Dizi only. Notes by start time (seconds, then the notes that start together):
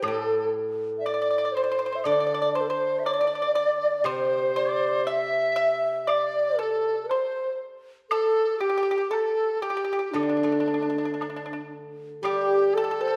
0.06 A4
0.99 E5
1.07 D5
1.55 C5
1.63 D5
1.70 C5
2.06 D5
2.56 C5
2.70 C5
2.99 E5
3.05 D5
3.97 D5
4.06 C5
5.08 E5
6.02 E5
6.09 D5
6.60 A4
7.09 C5
8.09 A4
8.61 G4
9.11 A4
9.62 G4
10.15 D4
12.24 G4
12.74 A4